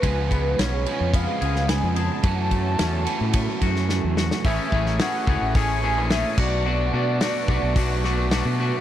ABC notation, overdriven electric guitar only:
X:1
M:4/4
L:1/8
Q:1/4=109
K:A
V:1 name="Overdriven electric guitar"
[C,^E,G,B,G]3 [C,E,G,B,G]4- [C,E,G,B,G] | [F,,C,F,A,CF]3 [F,,C,F,A,CF]4- [F,,C,F,A,CF] | [A,,E,A,CE] [A,,E,A,CE] [A,,E,A,CE] [A,,E,A,CE] [A,,E,A,CE] [A,,E,A,CE] [A,,E,A,CE] [B,,F,B,DF] | [B,,F,B,DF] [B,,F,B,DF] [B,,F,B,DF] [B,,F,B,DF] [B,,F,B,DF] [B,,F,B,DF] [B,,F,B,DF] [B,,F,B,DF] |]